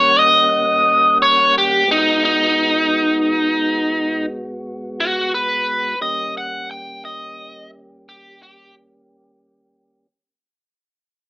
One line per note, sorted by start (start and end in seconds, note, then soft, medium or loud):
0.00 1.84 D#2 medium
0.00 1.84 G3 medium
0.00 1.84 A#3 medium
0.00 1.84 C#4 medium
0.00 0.19 C#5 medium
0.00 1.84 F#5 medium
0.19 1.18 D#5 medium
1.22 1.54 C#5 medium
1.58 1.89 G4 medium
1.88 5.95 G#2 medium
1.88 5.95 G#3 medium
1.88 5.95 B3 medium
1.88 2.23 D#4 medium
1.88 5.95 F#4 medium
2.25 4.25 D#4 medium
5.00 5.32 F#4 medium
5.34 5.99 B4 medium
6.01 10.07 D#2 medium
6.01 10.07 G3 medium
6.01 10.07 A#3 medium
6.01 10.07 C#4 medium
6.01 10.07 G4 medium
6.01 6.34 D#5 medium
6.37 6.69 F#5 medium
6.71 7.03 G5 medium
7.05 7.70 D#5 loud
8.09 8.40 G4 medium
8.43 8.74 G4 medium